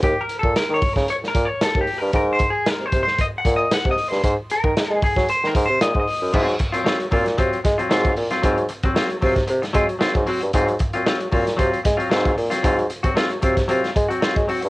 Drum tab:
CC |----------------|----------------|----------------|x---------------|
HH |x-x-x-o-x-x-x-o-|x-x-x-x-x-x-x-o-|x-x-x-o-x-x-x-o-|-xxx-xoxxxxx-xox|
SD |----o--o-o--o---|----o--o----o--o|----o--o-o--o---|----o--o--o-o--o|
BD |o--o--oo--o--o--|o-o---o-o-o--o--|o--o--oo--o--o--|o-o---o-o-o--o--|

CC |----------------|----------------|----------------|
HH |xxxx-xoxxxxx-xox|xxxx-xoxxxxx-xox|xxxx-xxxxxxx-xox|
SD |----o--o-o--o---|----o--o--o-o--o|----o--o-o--o---|
BD |o--o--oo--o--o--|o-o---o-o-o--o--|o--o--oo--o--o--|